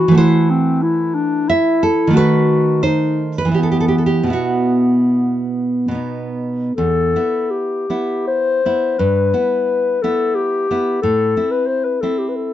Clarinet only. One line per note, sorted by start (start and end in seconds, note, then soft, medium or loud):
0.00 0.17 F#4 medium
0.17 0.52 E4 medium
0.51 0.84 C4 medium
0.83 1.16 E4 medium
1.15 1.50 D4 medium
1.49 2.16 E4 medium
2.15 2.85 F#4 medium
2.83 3.29 D#4 medium
3.56 4.29 B3 medium
4.33 6.33 B3 medium
6.76 7.52 A4 medium
7.51 8.27 G4 medium
8.28 9.00 C5 medium
8.99 10.03 B4 medium
10.02 10.37 A4 medium
10.35 11.01 G4 medium
11.02 11.53 A4 medium
11.51 11.69 B4 medium
11.67 11.86 C5 medium
11.84 12.02 B4 medium
12.01 12.20 A4 medium
12.19 12.30 G4 medium
12.29 12.37 B4 soft
12.36 12.53 A4 medium